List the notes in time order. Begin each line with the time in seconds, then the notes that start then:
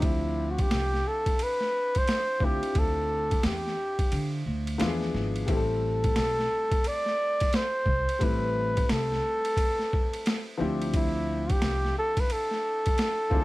Already playing: D2 F3 C4 D4 E4 G4
0.02 E4, kick, ride
0.51 F#4
0.58 G4, kick, ride
0.71 C2, snare, hi-hat pedal, ride
0.94 snare
1.08 A4
1.26 kick, ride
1.39 B4, ride
1.61 snare
1.95 C5, kick, ride
2.07 snare, hi-hat pedal, ride
2.39 D2 C4 D4 E4 F4, kick
2.44 G4
2.63 ride
2.75 D2 A4, kick, ride
3.31 kick, ride
3.43 E2 G4, snare, hi-hat pedal, ride
3.66 snare
3.99 kick, ride
4.12 D3, ride
4.46 D2
4.67 ride
4.78 E2 F3 B3 D4 E4 F4, snare, hi-hat pedal, ride
4.87 G#4
5.01 snare
5.14 G#1, snare
5.36 ride
5.46 A1 G3 A3 C4 E4, kick, ride
5.50 G4 A4
5.57 A4
6.04 kick, ride
6.16 B1, snare, hi-hat pedal, ride
6.39 snare
6.72 kick, ride
6.84 D5, ride
7.06 snare
7.40 kick, ride
7.53 C5, snare, hi-hat pedal, ride
7.86 C2, kick
8.09 ride
8.19 A1 G3 A3 C4 E4, kick, ride
8.23 B4
8.77 kick, ride
8.89 C2 A4, snare, hi-hat pedal, ride
9.12 snare
9.45 ride
9.57 kick, ride
9.79 snare
9.93 kick
10.13 ride
10.26 snare, hi-hat pedal, ride
10.58 D2 F3 C4 D4 E4 G4
10.82 ride
10.94 E4, kick, ride
11.50 G4, kick, ride
11.62 C2, snare, hi-hat pedal, ride
11.85 snare
11.98 A4
12.17 B4, kick, ride
12.30 A4, ride
12.51 snare
12.86 kick, ride
12.98 snare, hi-hat pedal, ride
13.30 D2 C4 D4 E4 F4, kick
13.34 G#4
13.40 A4